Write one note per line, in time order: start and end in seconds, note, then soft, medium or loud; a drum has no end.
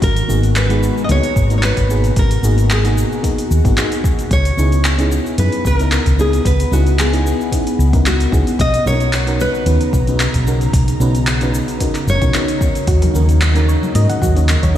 0.00 0.20 G#1 medium
0.00 4.26 B2 medium
0.00 4.27 F#4 medium
0.00 0.53 A#4 loud
0.00 4.27 A#5 medium
0.00 kick loud
0.00 open hi-hat medium
0.00 cabasa soft
0.16 open hi-hat soft
0.16 cabasa soft
0.28 0.89 G#1 medium
0.28 0.66 A#3 medium
0.28 0.66 B3 medium
0.28 0.67 D#4 medium
0.28 0.67 F#4 medium
0.28 0.67 G#4 medium
0.28 cabasa medium
0.43 open hi-hat soft
0.43 cabasa soft
0.56 1.04 B4 medium
0.56 clap loud
0.56 open hi-hat medium
0.56 cabasa soft
0.69 1.06 G#3 medium
0.69 1.06 B3 medium
0.69 1.06 D#4 medium
0.69 1.06 F#4 medium
0.69 1.07 G#4 medium
0.69 open hi-hat soft
0.69 cabasa soft
0.83 cabasa medium
0.98 cabasa soft
1.04 1.10 D#5 medium
1.09 1.19 C#2 medium
1.09 1.47 A#3 medium
1.09 1.47 B3 medium
1.09 1.47 D#4 medium
1.09 1.47 F#4 medium
1.09 1.48 G#4 medium
1.09 1.57 C#5 loud
1.09 open hi-hat medium
1.09 cabasa soft
1.23 open hi-hat soft
1.23 cabasa soft
1.36 1.69 G#1 medium
1.36 kick medium
1.36 cabasa medium
1.50 1.86 A#3 medium
1.50 1.87 B3 medium
1.50 1.87 D#4 medium
1.50 1.87 F#4 medium
1.50 1.87 A#4 medium
1.50 open hi-hat soft
1.50 cabasa soft
1.58 1.64 C#5 medium
1.63 2.14 B4 medium
1.63 clap medium
1.63 open hi-hat medium
1.63 cabasa soft
1.77 2.09 G#1 medium
1.77 kick medium
1.77 open hi-hat soft
1.77 cabasa soft
1.89 2.11 A#3 medium
1.89 2.11 B3 medium
1.89 2.12 D#4 medium
1.89 2.12 F#4 medium
1.89 2.12 G#4 loud
1.89 cabasa medium
2.04 open hi-hat soft
2.04 cabasa soft
2.16 2.34 G#1 loud
2.16 2.73 A#4 medium
2.16 kick loud
2.16 open hi-hat medium
2.16 cabasa soft
2.31 open hi-hat soft
2.31 cabasa soft
2.43 3.03 G#1 medium
2.43 2.81 A#3 medium
2.43 2.81 B3 medium
2.43 2.81 D#4 medium
2.43 2.81 F#4 medium
2.43 2.82 G#4 loud
2.43 cabasa medium
2.58 open hi-hat soft
2.58 cabasa soft
2.70 4.01 G#4 medium
2.70 clap medium
2.70 open hi-hat medium
2.70 cabasa soft
2.84 3.20 A#3 medium
2.84 3.21 B3 medium
2.84 3.21 D#4 medium
2.84 3.21 F#4 medium
2.84 3.21 G#4 loud
2.84 open hi-hat soft
2.84 cabasa soft
2.98 cabasa medium
3.12 cabasa soft
3.23 3.61 A#3 medium
3.23 3.61 B3 medium
3.23 3.61 D#4 medium
3.23 3.62 F#4 medium
3.23 3.62 G#4 medium
3.23 kick medium
3.23 open hi-hat medium
3.23 cabasa soft
3.38 open hi-hat soft
3.38 cabasa soft
3.51 3.60 D#2 medium
3.51 cabasa medium
3.64 3.73 G#1 medium
3.64 3.74 A#3 medium
3.64 3.74 B3 medium
3.64 3.74 D#4 medium
3.64 3.75 F#4 medium
3.64 3.75 G#4 medium
3.64 kick loud
3.64 open hi-hat soft
3.64 cabasa soft
3.77 4.29 A#3 medium
3.77 4.29 B3 medium
3.77 4.30 D#4 medium
3.77 4.30 F#4 medium
3.77 4.30 G#4 medium
3.77 clap medium
3.77 open hi-hat medium
3.77 cabasa soft
3.92 open hi-hat soft
3.92 cabasa soft
4.04 kick loud
4.04 cabasa medium
4.19 open hi-hat soft
4.19 cabasa soft
4.31 4.49 C#2 medium
4.31 8.55 B3 medium
4.31 5.39 C#5 loud
4.31 kick loud
4.31 open hi-hat medium
4.31 cabasa soft
4.45 open hi-hat soft
4.45 cabasa soft
4.57 5.17 C#2 medium
4.57 4.95 B3 medium
4.57 4.95 C#4 medium
4.57 4.96 D#4 medium
4.57 4.96 E4 medium
4.57 4.96 G#4 medium
4.57 cabasa medium
4.72 open hi-hat soft
4.72 cabasa soft
4.84 clap medium
4.84 open hi-hat medium
4.84 cabasa soft
4.98 5.35 B3 medium
4.98 5.35 C#4 medium
4.98 5.35 D#4 medium
4.98 5.35 E4 medium
4.98 5.36 G#4 medium
4.98 open hi-hat soft
4.98 cabasa soft
5.12 cabasa medium
5.26 cabasa soft
5.38 5.47 F#2 medium
5.38 5.76 B3 medium
5.38 5.76 C#4 medium
5.38 5.76 D#4 medium
5.38 5.76 E4 medium
5.38 5.76 G#4 medium
5.38 5.64 B4 medium
5.38 open hi-hat medium
5.38 cabasa soft
5.52 open hi-hat soft
5.52 cabasa soft
5.65 5.98 C#2 medium
5.65 6.16 A#4 medium
5.65 kick medium
5.65 cabasa medium
5.79 6.15 B3 medium
5.79 6.15 C#4 medium
5.79 6.16 D#4 medium
5.79 6.16 E4 medium
5.79 6.16 A#4 medium
5.79 open hi-hat soft
5.79 cabasa soft
5.92 clap medium
5.92 open hi-hat medium
5.92 cabasa soft
6.06 6.38 C#2 medium
6.06 kick medium
6.06 open hi-hat soft
6.06 cabasa soft
6.18 6.40 B3 medium
6.18 6.40 C#4 medium
6.18 6.41 D#4 medium
6.18 6.41 E4 medium
6.18 6.41 G#4 medium
6.18 6.44 G#4 medium
6.18 cabasa medium
6.33 open hi-hat soft
6.33 cabasa soft
6.45 6.63 C#2 medium
6.45 6.71 B4 loud
6.45 kick loud
6.45 open hi-hat medium
6.45 cabasa soft
6.60 open hi-hat soft
6.60 cabasa soft
6.71 7.32 C#2 medium
6.71 7.09 B3 medium
6.71 7.10 C#4 medium
6.71 7.10 D#4 medium
6.71 7.10 E4 medium
6.71 7.00 F#4 medium
6.71 7.10 G#4 loud
6.71 cabasa medium
6.87 open hi-hat soft
6.87 cabasa soft
6.99 8.07 G#4 medium
6.99 clap medium
6.99 open hi-hat medium
6.99 cabasa soft
7.12 7.49 B3 medium
7.12 7.49 C#4 medium
7.12 7.49 D#4 medium
7.12 7.50 E4 medium
7.12 7.50 G#4 loud
7.12 open hi-hat soft
7.12 cabasa soft
7.27 cabasa medium
7.41 cabasa soft
7.52 7.90 B3 medium
7.52 7.90 C#4 medium
7.52 7.90 D#4 medium
7.52 7.90 E4 medium
7.52 7.91 G#4 medium
7.52 kick medium
7.52 open hi-hat medium
7.52 cabasa soft
7.67 open hi-hat soft
7.67 cabasa soft
7.79 8.25 C#2 medium
7.79 cabasa medium
7.93 8.29 B3 medium
7.93 8.29 C#4 medium
7.93 8.30 D#4 medium
7.93 8.30 E4 medium
7.93 8.30 A#4 medium
7.93 kick loud
7.93 open hi-hat soft
7.93 cabasa soft
8.06 8.62 F#4 medium
8.06 clap medium
8.06 open hi-hat medium
8.06 cabasa soft
8.20 open hi-hat soft
8.20 cabasa soft
8.32 8.42 C#2 medium
8.32 8.54 B3 medium
8.32 8.54 C#4 medium
8.32 8.54 D#4 medium
8.32 8.55 E4 medium
8.32 8.55 G#4 loud
8.32 kick loud
8.32 cabasa medium
8.47 open hi-hat soft
8.47 cabasa soft
8.59 8.77 B1 loud
8.59 14.78 C#3 medium
8.59 14.78 D#4 medium
8.59 8.87 D#5 loud
8.59 12.84 A#5 medium
8.59 kick loud
8.59 open hi-hat medium
8.59 cabasa soft
8.74 open hi-hat soft
8.74 cabasa soft
8.85 9.46 B1 medium
8.85 9.24 B3 medium
8.85 9.24 C#4 medium
8.85 9.24 D#4 medium
8.85 9.24 F#4 medium
8.85 9.24 A#4 loud
8.85 9.42 C#5 medium
8.85 cabasa medium
9.00 open hi-hat soft
9.00 cabasa soft
9.13 clap medium
9.13 open hi-hat medium
9.13 cabasa soft
9.27 9.63 B3 medium
9.27 9.63 C#4 medium
9.27 9.64 D#4 medium
9.27 9.64 F#4 medium
9.27 9.64 A#4 medium
9.27 open hi-hat soft
9.27 cabasa soft
9.40 12.16 B4 loud
9.40 cabasa medium
9.55 cabasa soft
9.66 9.76 D#2 loud
9.66 10.04 B3 medium
9.66 10.04 C#4 medium
9.66 10.04 D#4 medium
9.66 10.05 F#4 medium
9.66 10.05 B4 medium
9.66 open hi-hat medium
9.66 cabasa soft
9.81 open hi-hat soft
9.81 cabasa soft
9.93 10.26 B1 medium
9.93 kick medium
9.93 cabasa medium
10.07 10.44 B3 medium
10.07 10.44 C#4 medium
10.07 10.44 D#4 medium
10.07 10.44 F#4 medium
10.07 10.45 B4 medium
10.07 open hi-hat soft
10.07 cabasa soft
10.20 clap medium
10.20 open hi-hat medium
10.20 cabasa soft
10.34 10.66 B1 medium
10.34 kick medium
10.34 open hi-hat soft
10.34 cabasa soft
10.46 10.69 B3 medium
10.46 10.69 C#4 medium
10.46 10.69 D#4 medium
10.46 10.69 F#4 medium
10.46 10.69 A#4 loud
10.46 cabasa medium
10.61 open hi-hat soft
10.61 cabasa soft
10.73 10.92 B1 medium
10.73 kick loud
10.73 open hi-hat medium
10.73 cabasa soft
10.88 open hi-hat soft
10.88 cabasa soft
11.00 11.60 B1 medium
11.00 11.38 B3 medium
11.00 11.38 C#4 medium
11.00 11.38 D#4 medium
11.00 11.39 F#4 medium
11.00 11.39 B4 loud
11.00 cabasa medium
11.15 open hi-hat soft
11.15 cabasa soft
11.27 clap medium
11.27 open hi-hat medium
11.27 cabasa soft
11.41 11.78 B3 medium
11.41 11.78 C#4 medium
11.41 11.78 D#4 medium
11.41 11.78 F#4 medium
11.41 11.79 B4 loud
11.41 open hi-hat soft
11.41 cabasa soft
11.54 cabasa medium
11.68 open hi-hat soft
11.68 cabasa soft
11.80 12.18 B3 medium
11.80 12.18 C#4 medium
11.80 12.18 D#4 medium
11.80 12.19 F#4 medium
11.80 12.19 A#4 medium
11.80 kick medium
11.80 open hi-hat medium
11.80 cabasa soft
11.95 clap soft
11.95 open hi-hat soft
11.95 cabasa soft
12.07 12.17 F#1 medium
12.07 12.85 C#5 medium
12.07 cabasa medium
12.22 12.30 B1 medium
12.22 12.31 B3 medium
12.22 12.31 C#4 medium
12.22 12.32 D#4 medium
12.22 12.32 F#4 medium
12.22 12.32 A#4 medium
12.22 kick loud
12.22 open hi-hat soft
12.22 cabasa soft
12.33 12.86 B3 medium
12.33 12.86 C#4 medium
12.33 12.86 D#4 medium
12.33 12.87 F#4 medium
12.33 12.87 A#4 medium
12.33 clap medium
12.33 open hi-hat medium
12.33 cabasa soft
12.48 open hi-hat soft
12.48 cabasa soft
12.61 kick loud
12.61 cabasa medium
12.75 open hi-hat soft
12.75 cabasa soft
12.87 13.06 D#2 medium
12.87 14.78 F#3 medium
12.87 12.96 F#4 medium
12.87 kick loud
12.87 open hi-hat medium
12.87 cabasa soft
13.02 13.09 A#4 medium
13.02 open hi-hat soft
13.02 high conga medium
13.02 low conga medium
13.02 cabasa soft
13.14 13.75 D#2 medium
13.14 13.52 A#3 medium
13.14 13.52 C#4 medium
13.14 13.52 D#4 medium
13.14 13.53 F#4 medium
13.14 13.53 A#4 loud
13.14 cabasa medium
13.29 open hi-hat soft
13.29 cabasa soft
13.41 clap loud
13.41 open hi-hat medium
13.41 high conga medium
13.41 cabasa soft
13.55 13.91 A#3 medium
13.55 13.92 C#4 medium
13.55 13.92 D#4 medium
13.55 13.92 F#4 medium
13.55 13.92 A#4 loud
13.55 open hi-hat soft
13.55 cabasa soft
13.68 13.81 C#5 medium
13.68 cabasa medium
13.83 high conga medium
13.83 cabasa soft
13.94 14.04 G#2 medium
13.94 14.32 A#3 medium
13.94 14.32 C#4 medium
13.94 14.33 D#4 medium
13.94 14.33 F#4 medium
13.94 14.33 A#4 medium
13.94 14.09 D#5 medium
13.94 open hi-hat medium
13.94 cabasa soft
14.09 14.21 F#5 medium
14.09 open hi-hat soft
14.09 low conga medium
14.09 cabasa soft
14.22 14.55 D#2 medium
14.22 14.30 F#4 loud
14.22 kick medium
14.22 high conga medium
14.22 cabasa medium
14.35 14.72 A#3 medium
14.35 14.72 C#4 medium
14.35 14.72 D#4 medium
14.35 14.72 F#4 medium
14.35 14.73 C#5 medium
14.35 open hi-hat soft
14.35 cabasa soft
14.49 14.56 A#4 medium
14.49 clap medium
14.49 open hi-hat medium
14.49 cabasa soft
14.63 14.78 D#2 medium
14.63 14.74 C#5 medium
14.63 kick medium
14.63 open hi-hat soft
14.63 high conga medium
14.63 low conga medium
14.63 cabasa soft
14.74 14.78 A#3 medium